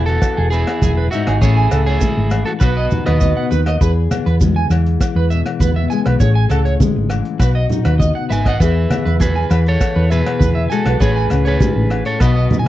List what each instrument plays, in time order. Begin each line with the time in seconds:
Already playing: fingered electric bass E1, steel-string acoustic guitar E2 B3 E4
0.06 clean electric guitar F#4 A4, closed hi-hat
0.22 kick, cross-stick, closed hi-hat, muted conga, low agogo, maracas
0.37 fingered electric bass E1, clean electric guitar G#4
0.50 steel-string acoustic guitar E2, clean electric guitar E4 G#4 B4, closed hi-hat, maracas
0.67 cross-stick, closed hi-hat, low agogo
0.82 fingered electric bass E1, steel-string acoustic guitar F#2, clean electric guitar G#4, kick, closed hi-hat, high conga, maracas
0.97 clean electric guitar B4
1.11 steel-string acoustic guitar G#2, clean electric guitar D#4 F#4 E5, closed hi-hat, muted conga, maracas
1.27 fingered electric bass G#1, clean electric guitar G#4, cross-stick, closed hi-hat, low agogo
1.41 fingered electric bass A1, steel-string acoustic guitar A2 C#4, clean electric guitar E4 G#4 C#5, kick, closed hi-hat, muted conga, maracas
1.57 clean electric guitar G#5
1.71 fingered electric bass C#2, steel-string acoustic guitar C#4, clean electric guitar A4, cross-stick, closed hi-hat, muted conga, low agogo, maracas
1.86 clean electric guitar E4 G#4 C#5, closed hi-hat
2.01 steel-string acoustic guitar G#3, kick, closed hi-hat, high conga, maracas
2.17 fingered electric bass G#1
2.31 steel-string acoustic guitar E3, cross-stick, closed hi-hat, low agogo, maracas
2.45 clean electric guitar F#4 A4, closed hi-hat
2.60 fingered electric bass B1, steel-string acoustic guitar B2 F#4, clean electric guitar F#4 B4, kick, cross-stick, closed hi-hat, muted conga, low agogo, maracas
2.77 clean electric guitar D#5
2.91 steel-string acoustic guitar D#4, closed hi-hat, high conga, low conga, maracas
3.06 fingered electric bass D#2, clean electric guitar B4 D#5, cross-stick, closed hi-hat, low agogo
3.21 steel-string acoustic guitar B3, clean electric guitar D#5, kick, closed hi-hat, high conga, maracas
3.37 clean electric guitar F#5
3.51 fingered electric bass D#2, steel-string acoustic guitar D#3, clean electric guitar B4, closed hi-hat, maracas
3.66 clean electric guitar D#5, cross-stick, closed hi-hat, low agogo
3.81 fingered electric bass E2, steel-string acoustic guitar E2 G#4, clean electric guitar B4, kick, closed hi-hat, muted conga, maracas
4.11 steel-string acoustic guitar B3, cross-stick, closed hi-hat, muted conga, high conga, low agogo, maracas
4.26 fingered electric bass E2, clean electric guitar B4, closed hi-hat
4.41 steel-string acoustic guitar G#3, kick, closed hi-hat, high conga, maracas
4.56 clean electric guitar G#5
4.70 fingered electric bass E2, steel-string acoustic guitar E3, cross-stick, closed hi-hat, low agogo, maracas
4.86 closed hi-hat
5.01 kick, cross-stick, closed hi-hat, muted conga, low agogo, maracas
5.16 fingered electric bass E2, clean electric guitar B4
5.30 steel-string acoustic guitar B2, clean electric guitar E5, closed hi-hat, maracas
5.46 cross-stick, closed hi-hat, low agogo
5.60 fingered electric bass E2, steel-string acoustic guitar B3, clean electric guitar B4, kick, closed hi-hat, high conga, maracas
5.76 clean electric guitar E5
5.89 steel-string acoustic guitar G#3, clean electric guitar G#5, closed hi-hat, muted conga, maracas
6.06 fingered electric bass B1, clean electric guitar B4, cross-stick, closed hi-hat, low agogo
6.19 fingered electric bass A1, steel-string acoustic guitar A2 G#4, clean electric guitar C#5, kick, closed hi-hat, muted conga, maracas
6.35 clean electric guitar G#5
6.50 fingered electric bass C#2, steel-string acoustic guitar C#4, clean electric guitar A4, cross-stick, closed hi-hat, muted conga, low agogo, maracas
6.65 clean electric guitar C#5, closed hi-hat
6.80 steel-string acoustic guitar G#3, kick, closed hi-hat, high conga, maracas
6.96 fingered electric bass G#1
7.10 steel-string acoustic guitar E3, cross-stick, closed hi-hat, low agogo, maracas
7.25 closed hi-hat
7.39 fingered electric bass B1, steel-string acoustic guitar B2 F#4, clean electric guitar B4, kick, cross-stick, closed hi-hat, muted conga, low agogo, maracas
7.55 clean electric guitar D#5
7.70 steel-string acoustic guitar D#4, closed hi-hat, low conga, maracas
7.85 fingered electric bass D#2, clean electric guitar B4, cross-stick, closed hi-hat, low agogo
7.99 steel-string acoustic guitar B3, clean electric guitar D#5, kick, closed hi-hat, high conga, maracas
8.15 clean electric guitar F#5
8.29 fingered electric bass G#1, steel-string acoustic guitar D#3, clean electric guitar B4 E5 G#5, closed hi-hat, muted conga, maracas
8.45 clean electric guitar D#5 F#5, kick, cross-stick, closed hi-hat, low agogo
8.60 fingered electric bass E2, steel-string acoustic guitar E2 G#4, clean electric guitar B4 E5, kick, closed hi-hat, muted conga, maracas
8.90 steel-string acoustic guitar B3, cross-stick, closed hi-hat, muted conga, high conga, low agogo, maracas
9.05 fingered electric bass E2, clean electric guitar B4, closed hi-hat
9.20 clean electric guitar G#4 B4, kick, closed hi-hat, high conga, maracas
9.36 clean electric guitar G#5
9.50 fingered electric bass E2, steel-string acoustic guitar E3, clean electric guitar B4, cross-stick, closed hi-hat, low agogo, maracas
9.66 clean electric guitar A4 C#5, closed hi-hat
9.80 kick, cross-stick, closed hi-hat, muted conga, low agogo, maracas
9.96 fingered electric bass E2, clean electric guitar B4
10.10 steel-string acoustic guitar B2, clean electric guitar G#4 B4 E5, closed hi-hat, maracas
10.26 cross-stick, closed hi-hat, low agogo
10.39 fingered electric bass E2, clean electric guitar B4, kick, closed hi-hat, high conga, maracas
10.55 clean electric guitar E5
10.70 steel-string acoustic guitar G#3, clean electric guitar F#4 A4 G#5, closed hi-hat, muted conga, maracas
10.85 fingered electric bass B1, clean electric guitar B4, cross-stick, closed hi-hat, low agogo
11.00 fingered electric bass A1, steel-string acoustic guitar A2 G#4, clean electric guitar G#4 B4 C#5, kick, closed hi-hat, muted conga, maracas
11.15 clean electric guitar G#5
11.30 fingered electric bass C#2, steel-string acoustic guitar C#4, cross-stick, closed hi-hat, muted conga, low agogo, maracas
11.45 clean electric guitar G#4 B4 C#5, closed hi-hat
11.60 steel-string acoustic guitar G#2, kick, closed hi-hat, high conga, maracas
11.76 fingered electric bass A1
11.90 steel-string acoustic guitar A2, cross-stick, closed hi-hat, low agogo
12.05 clean electric guitar A4 C#5, closed hi-hat
12.20 fingered electric bass B1, steel-string acoustic guitar B2 F#4, clean electric guitar B4 D#5, kick, cross-stick, closed hi-hat, muted conga, low agogo, maracas
12.36 clean electric guitar D#5
12.50 steel-string acoustic guitar D#4, closed hi-hat, high conga, low conga, maracas
12.59 clean electric guitar G#5